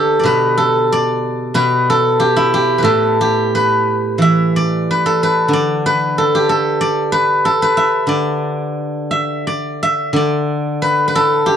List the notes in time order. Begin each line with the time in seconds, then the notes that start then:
Already playing: D3 G4 A4 B4 D5
0.19 D5
0.23 B2 B4
0.58 A4
0.92 D5
1.54 B2 B4
1.90 A4
2.20 G4
2.36 E4
2.54 G4
2.78 B4
2.83 A2 A4
3.21 G4
3.55 B4
4.18 E3 E5
4.56 D5
4.91 B4
5.06 A4
5.23 B4
5.48 D3
5.53 D5
5.86 B4
6.18 A4
6.35 G4
6.49 A4
6.81 D5
7.12 B4
7.45 A4
7.62 B4
7.77 E5
8.07 D3 D5
9.11 E5
9.47 D5
9.83 E5
10.13 D3 D5
10.82 B4
11.08 B4
11.15 A4
11.46 G4